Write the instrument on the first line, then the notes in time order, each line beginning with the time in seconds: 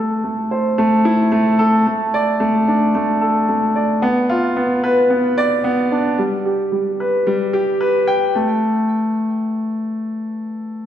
grand piano
Already playing: A4
0.24 A3
0.51 C5
0.78 A3
1.05 E4
1.32 A3
1.59 A4
1.87 A3
2.14 D5
2.40 A3
2.68 D4
2.95 A3
3.21 A4
3.49 A3
3.76 D5
4.02 B3
4.29 F4
4.56 B3
4.84 B4
5.10 B3
5.38 D5
5.64 B3
5.92 D4
6.19 G3
6.45 G4
6.72 G3
7.00 B4
7.27 G3
7.53 G4
7.81 B4
8.07 G5
8.35 A3